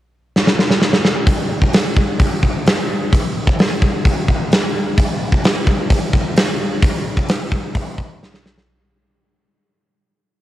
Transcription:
0.36 snare
0.47 snare
0.59 snare
0.70 snare
0.81 snare
0.93 snare
1.05 snare
1.27 kick, open hi-hat
1.62 kick
1.73 snare, open hi-hat
1.97 kick
2.20 kick, open hi-hat
2.43 kick
2.67 snare, open hi-hat
3.13 kick, open hi-hat
3.48 kick
3.59 snare, open hi-hat
3.82 kick
4.05 kick, open hi-hat
4.29 kick
4.52 snare, open hi-hat
4.98 kick, open hi-hat
5.32 kick
5.44 snare, open hi-hat
5.67 kick
5.90 kick, open hi-hat
6.13 kick
6.36 snare, open hi-hat
6.82 kick, open hi-hat
7.17 kick
7.29 snare, open hi-hat
7.52 kick
7.75 kick, open hi-hat
7.98 kick
8.23 snare
8.34 snare
8.46 snare
8.58 snare

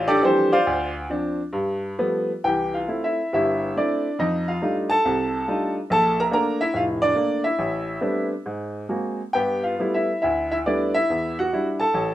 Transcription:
Already playing: A1
0.08 D4 G4 A4 D5
0.22 E3 F3 G3 C4 D4 G4 A4 C5
0.52 F4 C5 D5 F5
0.67 D2
1.10 F3 C4 D4
1.53 G2
1.98 F3 G3 A3 B3
2.44 C2 E3 G4 G5
2.74 F4 F5
2.88 A3 C4 E4
3.04 E4 E5
3.33 G1 G2 E4 E5
3.76 A3 C4 D4 E4 D5
4.19 F2 D#4 D#5
4.48 F4 F5
4.62 G3 A3 D4 D#4 F4
4.90 A4 A5
5.05 C2 C3
5.48 G3 A3 D4 D#4 F4
5.90 A#1 A4 A5
6.20 A#4 A#5
6.31 A3 A#3 D4 A#4 A#5
6.61 E4 E5
6.74 F1 A2 F4 F5
7.02 D4 D5
7.15 A3 A#3 D4
7.44 E4 E5
7.59 A1
8.01 G3 A3 B3 C4 D4
8.46 G#2
8.89 G#3 A#3 C4 F#4
9.33 G2 B3 G4 G5
9.63 F4 F5
9.79 G3 A3 B3 E4
9.94 E4 E5
10.22 D2 E4 E5
10.51 E4 E5
10.66 G3 A3 B3 D4 E4 D5
10.94 E4 E5
11.10 E2
11.39 F#4 F#5
11.53 G3 D4 E4
11.80 A4 A5
11.94 A1

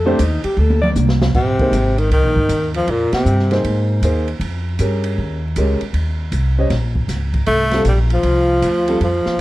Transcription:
Already playing: F2
0.05 A3 C4 D4 G4 C5
0.19 D#2 D#4, hi-hat pedal, ride
0.44 G4, muted upright bass stroke, ride
0.57 D2 A4
0.70 high tom
0.82 D5, mid tom
0.96 C2, hi-hat pedal, high tom
1.09 snare
1.22 snare
1.34 A#1 C3 C4, kick, crash
1.59 A#3 D#4 G#4 C5, muted upright bass stroke, kick, ride
1.71 G#1, hi-hat pedal, ride
1.97 D#3 D#4, ride
2.09 C2 D#3 D#4, ride
2.23 A#1
2.36 G#1, kick
2.49 D#2, hi-hat pedal, ride
2.74 F3 F4, ride
2.87 F2 A#2 A#3, ride
3.12 C3 C4, muted upright bass stroke, snare, ride
3.25 G2, hi-hat pedal
3.39 snare
3.51 A#3 D#4 G#4 C5, snare, ride
3.64 G#2, ride
4.02 D#2 A#3 D#4 G#4 C5, hi-hat pedal, ride
4.28 ride
4.40 F2, ride
4.79 G2 C#4 G4 G#4 A#4, hi-hat pedal, ride
5.04 ride
5.18 D#2
5.56 C#2 G#3 C#4 G4 A#4, hi-hat pedal, ride
5.81 muted upright bass stroke, ride
5.93 D#2, ride
6.32 C2, hi-hat pedal, ride
6.58 C#4 G4 C5 D#5
6.70 A#1, snare, ride
6.95 kick
7.08 C#2, snare, hi-hat pedal, ride
7.34 kick, ride
7.46 C2 A3 A4, ride
7.71 G3 C4 F4 A4, snare, ride
7.85 A#1 G3 G4, hi-hat pedal, ride
8.10 F3 F4, ride
8.23 C2, ride
8.62 D2, hi-hat pedal, ride
8.88 G3 C4 F4 A4, ride
9.00 F2 F3 F4, ride
9.26 muted upright bass stroke, snare

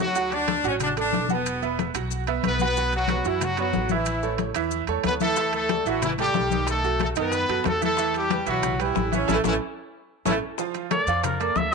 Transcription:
Already playing: D2
0.00 F#3 F#4 F#5
0.15 F#3 F#4 F#5, high conga, maracas
0.32 D4 D5, high conga, high timbale, maracas
0.48 A3 A4 D5, high conga, high timbale, low timbale, maracas
0.64 A1 F#3 C#4 F#4 C#5 F#5, high conga, maracas
0.80 D4 D5, high conga, low conga, high timbale, maracas
0.97 A3 D4 A4 D5, high conga, high timbale, maracas
1.13 E1, high conga, low timbale, maracas
1.29 F#3 B3 F#4 B4 F#5, high conga, maracas
1.46 high conga, high timbale, maracas
1.62 B3 B4 E5, high conga, maracas
1.79 high conga, high timbale, low timbale, maracas
1.94 B1 F#3 F#4 F#5, high conga, high timbale, maracas
2.11 high conga, maracas
2.27 B3 B4 E5, high conga, high timbale, maracas
2.43 B1 B3 B4, high conga, high timbale, low timbale, maracas
2.59 F#3 B3 F#4 B4 F#5, high conga, maracas
2.76 F#3 F#4 F#5, high conga, maracas
2.92 F#3 F#4, high conga, high timbale, maracas
3.08 B3 B4 C#5, high conga, high timbale, low timbale, maracas
3.25 F#2 E3 F#3 E4 F#4 F#5, high conga, maracas
3.41 F#3 F#4, high conga, low conga, high timbale, maracas
3.57 F#3 B3 F#4 B4 C#5, high conga, high timbale, maracas
3.73 A1, high conga, low timbale, maracas
3.89 E3 E4 E5, high conga, maracas
4.06 high conga, high timbale, maracas
4.23 A3 A4 C#5, high conga, maracas
4.38 high conga, high timbale, low timbale, maracas
4.54 E2 E3 E4 E5, high conga, high timbale, maracas
4.71 high conga, maracas
4.87 E2 A3 A4 C#5, high conga, high timbale, maracas
5.04 D2 B3 B4, high conga, high timbale, low timbale, maracas
5.20 E3 A3 E4 A4 E5, high conga, maracas
5.36 E3 E4 E5, high bongo, high conga, maracas
5.53 A3 A4, high conga, high timbale, maracas
5.69 A3 A4 D5, high bongo, high conga, high timbale, low timbale, maracas
5.85 A1 E3 F#3 E4 F#4 E5, high conga, maracas
6.02 E3 E4, high bongo, high conga, low conga, high timbale, maracas
6.18 G3 A3 G4 A4 D5, high conga, low conga, high timbale, maracas
6.34 B1, high bongo, low bongo, high conga, low timbale, maracas
6.50 D#3 D#4 D#5, high conga, maracas
6.67 A3 A4, high bongo, high timbale, maracas
6.83 F#3 F#4 A4, high conga, maracas
6.99 A3 A4, high bongo, high conga, high timbale, low timbale, maracas
7.15 F#2 D#3 B3 D#4 B4 D#5, high bongo, high conga, high timbale, maracas
7.32 high bongo, high conga, maracas
7.48 F#2 F#3 F#4 A4, high bongo, high conga, high timbale, maracas
7.64 E2 A3 A4, high bongo, low bongo, high conga, high timbale, low timbale, maracas
7.81 E3 A3 E4 A4 E5, high bongo, high conga, maracas
7.97 E3 E4 E5, high bongo, high conga, maracas
8.14 G3 G4, high conga, high timbale, maracas
8.30 G3 G4 B4, high bongo, high conga, high timbale, low timbale, maracas
8.46 B1 E3 F#3 E4 F#4 E5, high conga, maracas
8.63 high bongo, high conga, low conga, high timbale, maracas
8.79 E3 G3 E4 G4 B4, high conga, high timbale, maracas
8.95 A1, high bongo, low bongo, high conga, low timbale, maracas
9.12 E3 C#4 E4 C#5 E5, high conga, maracas
9.28 A1 E3 A3 C#4 E4 A4, high bongo, high conga, high timbale, maracas
9.44 A1 E3 A3 C#4 E4 A4, high bongo, high conga, high timbale, maracas
10.25 A1 E3 A3 C#4 E4 A4, high bongo, high conga, high timbale, maracas
10.58 F3 F4 F5, high bongo, high conga, maracas
10.74 high bongo, high conga, high timbale, maracas
10.91 A3 A4 A#4 D5, high bongo, high conga, high timbale, low timbale, maracas
11.07 F2 F3 F4 F5, high conga, maracas
11.23 A#4, high bongo, high conga, low conga, high timbale, maracas
11.40 A#3 A4 A#4 D5, high bongo, high conga, high timbale, maracas
11.55 D2 E5, high bongo, low bongo, high conga, low timbale, maracas

